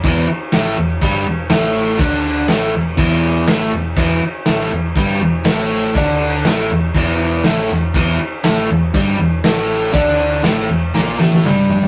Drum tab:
CC |x---x---x---x---|x---x---x---x---|x---x---x---x---|x---x---x---x---|
SD |----o-------o---|----o-------o---|----oo------o---|----o-------o-o-|
T1 |----------------|----------------|----------------|----------------|
T2 |----------------|----------------|----------------|----------------|
FT |----------------|----------------|----------------|----------------|
BD |o-------o-------|o-------o-------|o-------o-------|o-------o-------|

CC |x---x---x---x---|x---x-----------|
SD |----o-------o---|----o---o-------|
T1 |----------------|----------oo----|
T2 |----------------|------------o---|
FT |----------------|--------------oo|
BD |o-------o-------|o---------------|